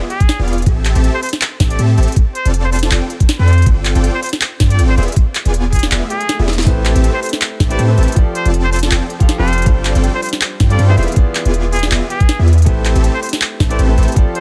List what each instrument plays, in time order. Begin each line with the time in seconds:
0.10 muted trumpet G#4, closed hi-hat
0.20 kick, closed hi-hat
0.29 snare, closed hi-hat
0.39 808-style bass E1, supersaw synth B3 F4 G#4 D5 F5
0.48 closed hi-hat
0.53 closed hi-hat
0.58 closed hi-hat
0.62 closed hi-hat
0.66 808-style bass A1, supersaw synth C4 G4 A4 E5, kick, closed hi-hat
0.85 clap, closed hi-hat
0.95 808-style bass A1, supersaw synth C4 G4 A4 E5 A5, closed hi-hat
1.04 closed hi-hat
1.14 muted trumpet C5
1.23 muted trumpet C5, closed hi-hat, open hi-hat
1.29 closed hi-hat
1.33 snare
1.41 clap, closed hi-hat
1.60 808-style bass A1, supersaw synth C4 G4 A4 E5 A5, kick, snare, closed hi-hat
1.70 muted trumpet D5, closed hi-hat
1.79 808-style bass A2, supersaw synth C4 G4 A4 E5 A5, closed hi-hat
1.98 808-style bass A1, supersaw synth C4 G4 A4 E5 A5, closed hi-hat
2.03 closed hi-hat
2.08 closed hi-hat
2.12 closed hi-hat
2.16 kick, closed hi-hat
2.35 muted trumpet C5, closed hi-hat
2.45 808-style bass F1, supersaw synth C4 F4 A4 D5 A5, closed hi-hat
2.54 closed hi-hat
2.64 muted trumpet C5
2.72 muted trumpet C5, closed hi-hat, open hi-hat
2.79 closed hi-hat
2.83 snare
2.91 808-style bass F1, supersaw synth C4 F4 A4 D5 G5, clap, closed hi-hat
3.10 closed hi-hat
3.20 kick, closed hi-hat
3.29 snare, closed hi-hat
3.39 808-style bass F2, supersaw synth C4 F4 A4 D5 G5, muted trumpet C5
3.48 closed hi-hat
3.53 closed hi-hat
3.58 closed hi-hat
3.62 closed hi-hat
3.66 808-style bass G1, supersaw synth C4 F4 A4 D5 G5, kick, closed hi-hat
3.85 clap, closed hi-hat
3.95 808-style bass G1, supersaw synth C4 F4 A4 D5 G5, closed hi-hat
4.04 closed hi-hat
4.14 muted trumpet C5
4.23 muted trumpet C5, closed hi-hat, open hi-hat
4.29 snare, closed hi-hat
4.41 clap, closed hi-hat
4.60 808-style bass G2, supersaw synth C4 F4 A4 D5 G5, kick, snare, closed hi-hat
4.70 muted trumpet D5, closed hi-hat
4.79 808-style bass G1, supersaw synth C4 F4 A4 D5 G5, closed hi-hat
4.89 muted trumpet C5
4.98 808-style bass E1, supersaw synth B3 F4 G#4 D5 E5, muted trumpet C5, closed hi-hat
5.03 closed hi-hat
5.08 closed hi-hat
5.12 closed hi-hat
5.16 kick, closed hi-hat
5.35 clap, closed hi-hat
5.45 808-style bass E1, supersaw synth B3 F4 G#4 D5 G#5, closed hi-hat
5.54 closed hi-hat
5.73 muted trumpet G#4, kick, closed hi-hat, open hi-hat
5.79 closed hi-hat
5.83 snare
5.91 808-style bass E1, supersaw synth B3 F4 G#4 D5 E5, clap, closed hi-hat, swell
6.10 muted trumpet G#4, closed hi-hat
6.21 closed hi-hat
6.29 snare, closed hi-hat
6.39 808-style bass E1, supersaw synth B3 F4 G#4 D5 E5
6.48 snare, closed hi-hat
6.53 closed hi-hat
6.58 snare, closed hi-hat
6.62 808-style bass A1, grand piano A3 E4 G4, supersaw synth C4 G4 A4 E5 A5, kick, closed hi-hat
6.67 grand piano B4 C5, closed hi-hat
6.85 clap, closed hi-hat
6.95 808-style bass A1, supersaw synth C4 G4 A4 E5 A5, closed hi-hat
7.04 closed hi-hat
7.14 muted trumpet C5
7.22 muted trumpet C5, closed hi-hat, open hi-hat
7.29 closed hi-hat
7.33 snare
7.41 clap, closed hi-hat
7.60 808-style bass A1, supersaw synth C4 G4 A4 E5 A5, kick, snare, closed hi-hat
7.69 grand piano A3 E4 G4 B4 C5, muted trumpet D5, closed hi-hat
7.79 808-style bass A2, supersaw synth C4 G4 A4 E5 A5, closed hi-hat
7.88 grand piano A3 E4 G4 B4 C5
7.98 808-style bass A1, supersaw synth C4 G4 A4 E5 A5, closed hi-hat
8.03 closed hi-hat
8.08 closed hi-hat
8.12 grand piano F3 F4, closed hi-hat
8.16 grand piano G4 A4 D5, kick, closed hi-hat
8.35 muted trumpet C5, closed hi-hat
8.45 808-style bass F1, supersaw synth C4 F4 A4 D5 A5, closed hi-hat
8.54 closed hi-hat
8.64 muted trumpet C5
8.72 muted trumpet C5, closed hi-hat, open hi-hat
8.79 closed hi-hat
8.83 snare
8.91 808-style bass F1, supersaw synth C4 F4 A4 D5 G5, clap, closed hi-hat
9.10 closed hi-hat
9.19 grand piano F3 F4 G4 A4 F5, kick, closed hi-hat
9.29 snare, closed hi-hat
9.38 808-style bass F1, grand piano F3 F4 G4 A4 F5, supersaw synth C4 F4 A4 D5 G5, muted trumpet C5
9.48 closed hi-hat
9.53 closed hi-hat
9.58 closed hi-hat
9.62 grand piano G3 D4, closed hi-hat
9.66 808-style bass G1, supersaw synth C4 F4 A4 D5 G5, grand piano F4 A4 C5, kick, closed hi-hat
9.85 clap, closed hi-hat
9.95 808-style bass G1, supersaw synth C4 F4 A4 D5 G5, closed hi-hat
10.04 closed hi-hat
10.14 muted trumpet C5
10.23 muted trumpet C5, closed hi-hat, open hi-hat
10.29 closed hi-hat
10.33 snare
10.41 clap, closed hi-hat
10.60 808-style bass G2, supersaw synth C4 F4 A4 D5 G5, kick, snare, closed hi-hat
10.70 grand piano G3 D4 F4 A4 D5, muted trumpet D5, closed hi-hat
10.79 808-style bass G2, supersaw synth C4 F4 A4 D5 G5, closed hi-hat
10.88 grand piano E3 B3 F4 G#4 E5, muted trumpet C5
10.98 808-style bass E1, supersaw synth B3 F4 G#4 D5 E5, muted trumpet C5, closed hi-hat
11.03 closed hi-hat
11.08 closed hi-hat
11.12 grand piano B3, closed hi-hat
11.16 grand piano F4 G#4 D5, kick, closed hi-hat
11.35 clap, closed hi-hat
11.45 808-style bass E1, supersaw synth B3 F4 G#4 D5 G#5, closed hi-hat
11.54 closed hi-hat
11.73 muted trumpet G#4, closed hi-hat, open hi-hat
11.79 closed hi-hat
11.83 snare
11.91 808-style bass E1, supersaw synth B3 F4 G#4 D5 E5, clap, closed hi-hat
12.10 muted trumpet G#4, closed hi-hat
12.20 kick, closed hi-hat
12.29 snare, closed hi-hat
12.39 808-style bass E2, supersaw synth B3 F4 G#4 D5 E5
12.48 closed hi-hat
12.53 closed hi-hat
12.58 closed hi-hat
12.62 grand piano A3 E4, closed hi-hat
12.66 808-style bass A1, supersaw synth C4 G4 A4 E5 A5, grand piano G4 B4 C5, kick, closed hi-hat
12.85 clap, closed hi-hat
12.95 808-style bass A1, supersaw synth C4 G4 A4 E5 A5, closed hi-hat
13.04 closed hi-hat
13.14 muted trumpet C5
13.22 muted trumpet C5, closed hi-hat, open hi-hat
13.29 closed hi-hat
13.33 snare
13.41 clap, closed hi-hat
13.60 808-style bass A1, supersaw synth C4 G4 A4 E5 A5, kick, snare, closed hi-hat
13.69 grand piano A3 E4 G4 B4 C5, muted trumpet D5, closed hi-hat
13.79 808-style bass A1, supersaw synth C4 G4 A4 E5 A5, closed hi-hat
13.88 grand piano A3 E4 G4 B4 C5
13.97 808-style bass A1, supersaw synth C4 G4 A4 E5 A5, closed hi-hat
14.03 closed hi-hat
14.08 closed hi-hat
14.12 grand piano F3 F4, closed hi-hat
14.16 grand piano G4 A4 D5, kick, closed hi-hat
14.35 muted trumpet C5, closed hi-hat